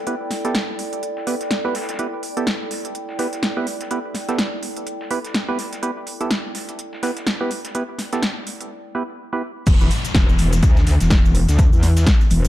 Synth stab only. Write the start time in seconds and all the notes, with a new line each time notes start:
0.07 B3 E4 G4 B4
0.45 B3 E4 G4 A4
1.27 B3 E4 G4 B4
1.65 B3 E4 G4 B4
1.99 B3 E4 G4 B4
2.37 B3 E4 G4 A4
3.19 B3 E4 G4 B4
3.57 B3 E4 G4 B4
3.91 B3 E4 G4 B4
4.29 B3 E4 G4 A4
5.11 B3 E4 G4 B4
5.49 B3 E4 G4 B4
5.83 B3 E4 G4 B4
6.21 B3 E4 G4 A4
7.03 B3 E4 G4 B4
7.41 B3 E4 G4 B4
7.75 B3 E4 G4 B4
8.13 B3 E4 G4 A4
8.95 B3 E4 G4 B4
9.33 B3 E4 G4 B4